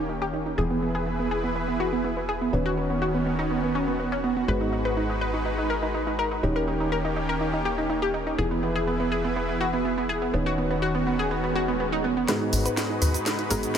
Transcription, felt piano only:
Already playing: D#3 C#4 D#4 G4
0.58 E3 B3 E4 G#4
2.53 D#3 C#4 D#4 B4
4.48 G#2 B3 F#4 G#4
6.43 D#3 C#4 D#4 G4
8.38 E3 B3 E4 G#4
10.34 D#3 C#4 D#4 B4
12.28 G#2 B3 F#4 G#4
13.50 G#2 B3 F#4 G#4

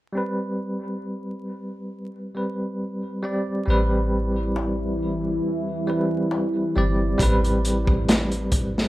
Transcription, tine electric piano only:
0.12 G3 C4
0.17 B4
2.35 G3 C4 B4
3.22 G3 C4 D5
3.66 G3 C4
3.70 B4
5.87 G3 C4 B4
6.75 G3 C4 D5
7.18 G3 C4
7.23 B4

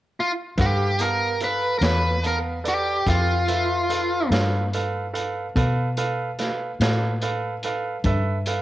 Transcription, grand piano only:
0.57 A4 B4 F5
1.00 B3 F5 A5
1.41 A4 B4 F5
1.83 A4 B4 F5
2.23 B3 F5 A5
2.64 A4 B4 D5
3.07 A4 B4 G5
3.48 A4 B4 E5
3.89 A4 B4 F5
4.31 A4 B4 F5
4.74 A4 B4 F5
5.13 A4 B4 F5
5.56 A4 B4 F5
5.98 A4 B4 F5
6.39 A4 B4 F5
6.81 A4 B4 F5
7.22 A4 B4 F5
7.64 A4 B4 F5
8.05 A4 B4 E5
8.47 A4 B4 F5

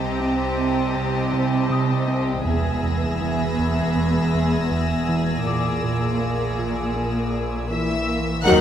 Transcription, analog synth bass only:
0.20 C4
0.58 C3
0.96 C3
1.33 C3
1.70 C3
2.08 C4
2.46 E2
2.83 E2
3.21 E3
3.59 E2
3.96 E2
4.34 E2
4.71 E2
5.09 E3
5.46 A#2
5.84 A#2
6.21 A#3
6.59 A#2
6.96 A#2
7.34 A#2
7.71 A#2
8.08 A#3
8.45 D#3

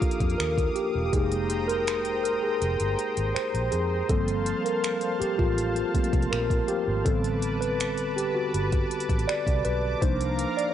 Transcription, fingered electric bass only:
0.02 muted fingered electric bass stroke
0.21 F2
0.40 D#2
0.95 E1
1.13 F1
2.62 F1
2.80 G1
3.17 G#1
3.36 muted fingered electric bass stroke
3.54 A#1
3.73 F2
4.10 G1
5.21 muted fingered electric bass stroke
5.39 A1
5.95 muted fingered electric bass stroke
6.13 C2
6.32 A#1
6.88 G#1
7.06 A1
8.54 G1
9.10 A1
9.47 C2
9.66 B1
10.02 C2

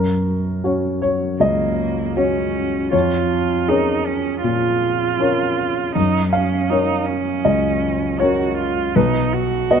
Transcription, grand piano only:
Already playing: F#2 A#4
0.64 C#4 F#4 C#5
1.02 C#5
1.40 C#2 D#5
2.16 C#4 F#4 C#5
2.92 F2 C#5
3.68 C#4 G#4 A#4 C#5
4.44 A#2
5.20 C#4 A#4 C#5
5.95 F#2
6.33 F5
6.70 C#4 A#4 C#5
7.45 C#2 D#5
8.20 C#4 A#4 C#5
8.96 B1 B4
9.70 B3 B4 D#5

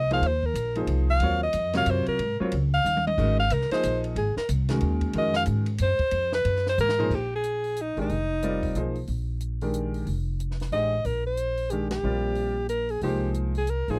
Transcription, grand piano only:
0.11 F3 A#3 D#4 G#4 C5
0.76 F3 A#3 D#4 G#4 C5
1.22 F#3 C4 F4 A#4 C#5
1.74 C3 F#3 F4 A#4 C#5
2.40 F#3 C4 F4 A#4 C#5
3.18 D#3 G#3 C#4 F#4 A#4
3.72 F3 A#3 D#4 G#4 D#5
4.69 D#3 G#3 C#4 F#4 A#4
5.14 D#3 G#3 C#4 F#4 A#4
6.98 F3 A#3 D#4 G#4 C5
7.97 D#3 G#3 D4 G4 A#4
8.43 G3 C4 F4 A#4 D5
8.76 F3 A#3 D#4 G#4 C5
9.62 D#3 G#3 D4 G4 A#4
10.73 G#3 D4 G4 C5 D#5
11.71 D#3 G#3 D4 G4 A#4
12.04 G3 C4 F4 A#4 D5
13.03 F3 G#3 A#3 D#4 C5
13.90 F3 A#3 D#4 G#4 C5

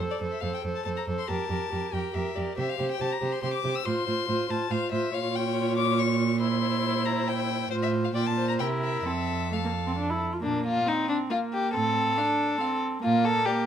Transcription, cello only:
0.21 F2
0.42 F2
0.64 F2
0.86 F2
1.08 F2
1.29 F2
1.50 F2
1.72 F2
1.94 F2
2.15 F2
2.37 F2
2.58 C3
2.79 C3
3.01 C3
3.22 C3
3.43 C3
3.65 C3
3.86 A2
4.08 A2
4.29 A2
4.50 A2
4.71 A2
4.92 A2
5.13 A#2
7.71 A2
8.15 A#2
8.59 C3
9.06 F2
10.43 A#2
11.74 A2
13.04 A#2

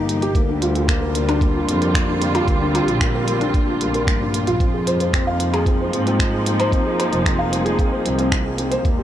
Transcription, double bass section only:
Already playing: G1
0.35 D2
1.68 F2
2.48 D2
2.87 A#1
3.80 A#1
4.07 G2
4.47 A#1
4.60 F2
5.93 G#2
6.72 F2
7.12 F1
8.05 C2
8.85 D#2

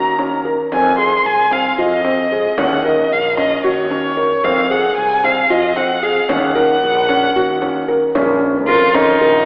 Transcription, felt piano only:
Already playing: F#4
0.19 C#4
0.45 A#4
0.72 C4
0.98 G#4
1.51 C4
1.78 F4
2.05 C4
2.32 G#4
2.58 C#4
2.85 A#4
3.38 C#4
3.64 F#4
3.90 C#4
4.17 A#4
4.44 C4
4.70 G#4
5.24 C4
5.50 F4
5.76 C4
6.03 G#4
6.29 C#4
6.55 A#4
7.09 C#4
7.36 F#4
7.62 C#4
7.88 A#4
8.15 C#4
8.69 A#4
8.95 C#4
9.21 A#4

